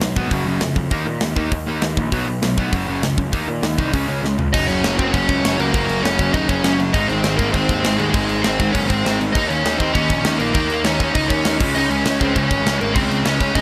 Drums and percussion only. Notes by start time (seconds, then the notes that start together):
0.01 snare, open hi-hat
0.16 kick
0.31 kick, open hi-hat
0.61 snare, open hi-hat
0.76 kick
0.91 kick, open hi-hat
1.20 snare, open hi-hat
1.36 kick
1.52 kick, open hi-hat
1.82 snare, open hi-hat
1.97 kick
2.12 kick, open hi-hat
2.42 snare, open hi-hat
2.58 kick
2.73 kick, open hi-hat
3.03 snare, open hi-hat
3.18 kick
3.33 kick, open hi-hat
3.63 snare, open hi-hat
3.78 kick
3.94 kick, open hi-hat
4.25 snare
4.39 floor tom
4.54 kick, crash
4.69 crash
4.84 snare, crash
4.99 kick, crash
5.14 kick, crash
5.29 kick, crash
5.45 snare, crash
5.59 crash
5.74 kick, crash
5.89 crash
6.05 snare, crash
6.19 kick, crash
6.34 kick, crash
6.49 kick, crash
6.64 snare, crash
6.80 crash
6.94 kick, crash
7.09 crash
7.24 snare, crash
7.39 kick, crash
7.54 kick, crash
7.69 kick, crash
7.84 snare, crash
7.99 crash
8.14 kick, crash
8.29 crash
8.44 snare, crash
8.60 kick, crash
8.75 kick, crash
8.90 kick, crash
9.06 snare, crash
9.21 crash
9.35 kick, crash
9.50 crash
9.65 snare, crash
9.80 kick, crash
9.95 kick, crash
10.09 kick, crash
10.24 snare, crash
10.40 crash
10.54 kick, crash
10.70 crash
10.84 snare, crash
11.00 kick, crash
11.15 kick, crash
11.30 kick, crash
11.45 snare, crash
11.60 kick, crash
11.76 crash
11.91 crash
12.05 snare, crash
12.21 kick, crash
12.36 kick, crash
12.51 kick, crash
12.66 snare, crash
12.81 crash
12.95 kick, crash
13.11 crash
13.25 snare, crash
13.40 kick, crash
13.55 kick, crash